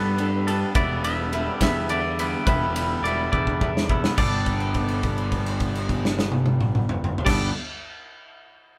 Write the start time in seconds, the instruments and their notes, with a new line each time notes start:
Already playing: picked electric bass G2, clean electric guitar G3 B3 D4 A4 B4
0.18 clean electric guitar G3 B3 D4 A4, ride
0.48 clean electric guitar G3 B3 D4 A4, ride
0.75 picked electric bass E1, clean electric guitar D3 E3 G3 B3 E4 D5, kick, ride
1.04 clean electric guitar D3 G3 B3 E4 E5, ride
1.32 clean electric guitar D3 G3 B3 E4, ride
1.51 clean electric guitar D5
1.61 picked electric bass E2, clean electric guitar D3 G3 B3 E4 E5, kick, snare, ride
1.89 clean electric guitar D3 G3 B3 E4 D5, ride
2.19 clean electric guitar D3 G3 B3 E4, ride
2.46 picked electric bass E1, clean electric guitar D3 E3 G3 B3 E4 B4, kick, ride
2.75 clean electric guitar D3 G3 B3 E4, ride
3.03 picked electric bass E1, clean electric guitar D3 G3 B3 E4 D5, ride
3.32 picked electric bass E2, clean electric guitar D3 G3 B3 E4 D5, kick
3.47 kick
3.60 clean electric guitar D3 G3 B3 E4, kick
3.77 snare
3.88 clean electric guitar D3 G3 B3 E4, kick
4.04 snare
4.16 picked electric bass G1, clean electric guitar G3 B3 D4 D5, kick, crash
4.20 clean electric guitar A4
4.46 kick, crash
4.60 crash
4.74 kick, crash
4.88 crash
5.03 kick, crash
5.18 crash
5.32 kick, crash
5.46 crash
5.60 kick, crash
5.75 crash
5.89 kick, crash
6.05 snare
6.19 snare
6.32 high tom
6.46 high tom
6.61 mid tom
6.75 mid tom
6.89 mid tom
7.04 mid tom
7.18 floor tom
7.25 picked electric bass G1, clean electric guitar G3 B3 D4 D5, kick, snare, crash
7.29 clean electric guitar A4